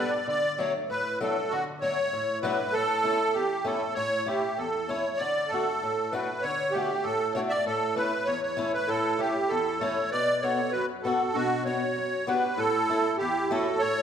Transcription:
0.00 0.13 G2 medium
0.00 0.11 G3 medium
0.00 0.11 B3 medium
0.00 0.12 D4 medium
0.00 0.11 G4 medium
0.00 0.11 B4 medium
0.00 0.27 D5 medium
0.28 0.74 D3 medium
0.28 0.61 D5 loud
0.58 0.73 F#3 medium
0.58 0.73 A3 medium
0.58 0.74 D4 medium
0.58 0.73 C#5 medium
0.90 1.36 A2 medium
0.90 1.19 B4 medium
1.21 1.35 F#3 medium
1.21 1.35 A3 medium
1.21 1.36 D4 medium
1.21 1.53 A4 medium
1.50 1.98 D3 medium
1.50 1.64 F#4 medium
1.81 1.96 F#3 medium
1.81 1.97 A3 medium
1.81 1.97 D4 medium
1.81 2.39 C#5 medium
2.13 2.59 A2 medium
2.42 2.57 F#3 medium
2.42 2.58 A3 medium
2.42 2.58 D4 loud
2.42 2.74 B4 medium
2.73 3.20 A2 medium
2.73 3.37 A4 loud
3.04 3.18 A3 medium
3.04 3.18 C#4 medium
3.04 3.19 E4 medium
3.34 3.81 E2 medium
3.34 3.66 G4 medium
3.65 3.79 A3 medium
3.65 3.80 C#4 medium
3.65 3.80 E4 medium
3.65 3.94 A4 medium
3.94 4.43 A2 medium
3.94 4.27 C#5 loud
4.26 4.41 A3 medium
4.26 4.41 C#4 medium
4.26 4.41 E4 medium
4.26 4.59 G4 medium
4.57 5.05 E2 medium
4.57 4.90 A4 medium
4.88 5.03 A3 medium
4.88 5.03 C#4 medium
4.88 5.04 E4 medium
4.88 5.21 C#5 medium
5.17 5.67 D3 medium
5.17 5.51 D5 loud
5.48 5.65 A3 medium
5.48 6.13 A4 medium
5.52 5.66 D4 medium
5.52 5.66 F#4 medium
5.83 6.29 A2 medium
6.12 6.27 A3 medium
6.12 6.27 D4 medium
6.12 6.28 F#4 medium
6.12 6.44 B4 medium
6.42 6.90 D3 medium
6.42 6.75 C#5 loud
6.72 6.89 A3 medium
6.72 7.05 G4 medium
6.76 6.89 D4 medium
6.76 6.90 F#4 medium
7.04 7.51 A2 medium
7.04 7.33 A4 medium
7.35 7.49 A3 medium
7.35 7.50 D4 medium
7.35 7.50 F#4 medium
7.35 7.40 C#5 medium
7.49 7.65 D5 loud
7.49 7.52 E5 medium
7.66 8.12 A2 medium
7.66 7.95 A4 medium
7.96 8.11 A3 medium
7.96 8.11 C#4 medium
7.96 8.11 E4 medium
7.96 8.28 B4 medium
8.25 8.74 E2 medium
8.25 8.41 C#5 medium
8.43 8.72 C#5 medium
8.57 8.72 A3 medium
8.57 8.72 C#4 medium
8.57 8.72 E4 medium
8.74 8.90 B4 loud
8.86 9.35 A2 medium
8.86 9.16 E4 medium
8.86 9.21 A4 loud
9.19 9.33 A3 medium
9.19 9.34 C#4 medium
9.19 9.48 E4 medium
9.19 9.34 E4 medium
9.19 9.51 G4 medium
9.49 9.97 E2 medium
9.49 9.79 E4 medium
9.49 9.82 A4 medium
9.80 9.96 A3 medium
9.80 9.96 C#4 medium
9.80 9.96 E4 medium
9.80 10.10 A4 medium
9.80 10.10 C#5 medium
10.11 10.59 B2 medium
10.11 10.41 B4 medium
10.11 10.45 D5 loud
10.42 10.58 B3 medium
10.42 10.58 D4 soft
10.42 10.59 F#4 medium
10.42 10.71 A4 medium
10.42 10.72 C#5 medium
10.71 11.21 F#2 medium
10.71 10.87 F#4 medium
10.71 10.86 B4 medium
11.02 11.19 B3 medium
11.02 11.20 D4 medium
11.02 11.33 F#4 medium
11.02 11.36 A4 medium
11.07 11.20 F#4 medium
11.34 11.82 B2 medium
11.34 11.64 D4 medium
11.34 11.64 F#4 loud
11.65 11.80 B3 medium
11.65 11.81 D4 medium
11.65 12.24 F#4 medium
11.65 11.81 F#4 medium
11.65 12.30 C#5 medium
11.96 12.43 F#2 medium
12.26 12.42 B3 medium
12.26 12.42 D4 medium
12.26 12.43 F#4 medium
12.26 12.56 G4 medium
12.26 12.60 B4 medium
12.58 13.04 A2 medium
12.58 13.16 E4 medium
12.58 13.16 A4 loud
12.89 13.04 A3 medium
12.89 13.04 C#4 medium
12.89 13.04 E4 medium
13.18 13.66 E2 medium
13.18 13.49 E4 medium
13.18 13.51 G4 loud
13.50 13.65 A3 medium
13.50 13.65 C#4 medium
13.50 13.65 E4 loud
13.50 13.80 F#4 medium
13.50 13.82 A4 medium
13.79 14.02 A2 medium
13.79 14.02 A4 medium
13.79 14.02 C#5 loud

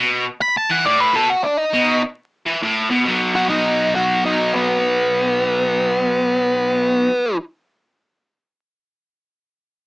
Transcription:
0.00 0.25 B2 loud
0.42 0.56 B5 medium
0.57 0.71 A5 medium
0.70 0.85 E3 medium
0.70 0.86 F#5 medium
0.86 1.13 A2 loud
0.86 1.00 D5 medium
1.00 1.15 B4 medium
1.14 1.30 B2 loud
1.14 1.30 A4 medium
1.30 1.44 F#4 medium
1.43 1.57 D4 medium
1.57 2.01 D#4 medium
1.74 2.01 B2 loud
2.46 2.62 E3 medium
2.62 2.90 A2 loud
2.90 3.05 B2 loud
3.06 7.08 B2 medium
3.06 7.10 F#3 loud
3.06 7.12 B3 loud
3.36 3.49 F#4 medium
3.49 3.93 D#4 medium
3.95 4.24 F#4 medium
4.25 4.54 D#4 medium
4.54 7.37 B3 medium

